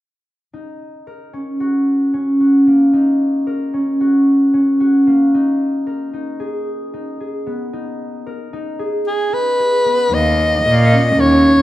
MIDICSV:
0, 0, Header, 1, 4, 480
1, 0, Start_track
1, 0, Key_signature, -6, "minor"
1, 0, Tempo, 532860
1, 478, Time_signature, 9, 3, 24, 8
1, 10467, End_track
2, 0, Start_track
2, 0, Title_t, "Soprano saxophone"
2, 0, Program_c, 0, 64
2, 8171, Note_on_c, 0, 68, 54
2, 8411, Note_on_c, 0, 71, 66
2, 8424, Note_off_c, 0, 68, 0
2, 9134, Note_on_c, 0, 75, 66
2, 9147, Note_off_c, 0, 71, 0
2, 10090, Note_on_c, 0, 73, 61
2, 10104, Note_off_c, 0, 75, 0
2, 10467, Note_off_c, 0, 73, 0
2, 10467, End_track
3, 0, Start_track
3, 0, Title_t, "Harp"
3, 0, Program_c, 1, 46
3, 482, Note_on_c, 1, 63, 51
3, 964, Note_on_c, 1, 70, 54
3, 1201, Note_on_c, 1, 61, 46
3, 1443, Note_on_c, 1, 66, 58
3, 1921, Note_off_c, 1, 61, 0
3, 1925, Note_on_c, 1, 61, 50
3, 2160, Note_off_c, 1, 66, 0
3, 2163, Note_on_c, 1, 66, 46
3, 2405, Note_on_c, 1, 58, 47
3, 2638, Note_off_c, 1, 63, 0
3, 2642, Note_on_c, 1, 63, 57
3, 2874, Note_off_c, 1, 70, 0
3, 3125, Note_on_c, 1, 70, 57
3, 3362, Note_off_c, 1, 61, 0
3, 3366, Note_on_c, 1, 61, 47
3, 3604, Note_off_c, 1, 66, 0
3, 3607, Note_on_c, 1, 66, 55
3, 4083, Note_off_c, 1, 61, 0
3, 4087, Note_on_c, 1, 61, 56
3, 4323, Note_off_c, 1, 66, 0
3, 4326, Note_on_c, 1, 66, 53
3, 4564, Note_off_c, 1, 58, 0
3, 4567, Note_on_c, 1, 58, 47
3, 4809, Note_off_c, 1, 63, 0
3, 4812, Note_on_c, 1, 63, 56
3, 5036, Note_off_c, 1, 70, 0
3, 5285, Note_on_c, 1, 70, 54
3, 5522, Note_off_c, 1, 63, 0
3, 5525, Note_on_c, 1, 63, 48
3, 5763, Note_on_c, 1, 68, 56
3, 6244, Note_off_c, 1, 63, 0
3, 6247, Note_on_c, 1, 63, 52
3, 6485, Note_off_c, 1, 68, 0
3, 6489, Note_on_c, 1, 68, 47
3, 6521, Note_off_c, 1, 66, 0
3, 6697, Note_off_c, 1, 61, 0
3, 6724, Note_on_c, 1, 59, 46
3, 6778, Note_off_c, 1, 58, 0
3, 6778, Note_off_c, 1, 70, 0
3, 6961, Note_off_c, 1, 63, 0
3, 6965, Note_on_c, 1, 63, 59
3, 7445, Note_on_c, 1, 70, 53
3, 7499, Note_off_c, 1, 59, 0
3, 7680, Note_off_c, 1, 63, 0
3, 7684, Note_on_c, 1, 63, 55
3, 7916, Note_off_c, 1, 68, 0
3, 7920, Note_on_c, 1, 68, 61
3, 8397, Note_off_c, 1, 63, 0
3, 8401, Note_on_c, 1, 63, 51
3, 8637, Note_off_c, 1, 68, 0
3, 8641, Note_on_c, 1, 68, 50
3, 8877, Note_on_c, 1, 59, 50
3, 8931, Note_off_c, 1, 70, 0
3, 9117, Note_on_c, 1, 58, 57
3, 9171, Note_off_c, 1, 59, 0
3, 9598, Note_on_c, 1, 70, 62
3, 9837, Note_on_c, 1, 61, 49
3, 10072, Note_off_c, 1, 70, 0
3, 10076, Note_on_c, 1, 70, 63
3, 10467, Note_off_c, 1, 58, 0
3, 10467, Note_off_c, 1, 61, 0
3, 10467, Note_off_c, 1, 63, 0
3, 10467, Note_off_c, 1, 68, 0
3, 10467, Note_off_c, 1, 70, 0
3, 10467, End_track
4, 0, Start_track
4, 0, Title_t, "Cello"
4, 0, Program_c, 2, 42
4, 9115, Note_on_c, 2, 39, 65
4, 9510, Note_off_c, 2, 39, 0
4, 9589, Note_on_c, 2, 46, 73
4, 9986, Note_off_c, 2, 46, 0
4, 10067, Note_on_c, 2, 39, 62
4, 10464, Note_off_c, 2, 39, 0
4, 10467, End_track
0, 0, End_of_file